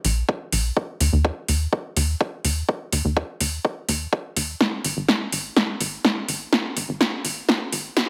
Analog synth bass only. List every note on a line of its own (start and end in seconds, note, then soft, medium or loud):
0.05 0.23 A#1 loud
0.53 0.71 A#1 medium
1.01 1.10 D#2 loud
1.13 1.31 D#2 loud
1.49 1.67 D#2 medium
1.97 2.15 D#2 loud
2.45 2.63 D#2 medium
2.93 3.02 D#2 loud
3.05 3.23 D#2 loud
3.41 3.59 D#2 medium
3.89 4.07 D#2 loud
4.37 4.55 D#2 medium
4.85 4.94 G#1 loud
4.97 5.15 G#1 loud
5.33 5.51 G#1 medium
5.80 5.99 G#1 loud
6.29 6.47 G#1 medium
6.77 6.86 G#1 medium
6.89 7.07 G#1 loud
7.25 7.43 G#1 medium
7.73 7.91 G#1 loud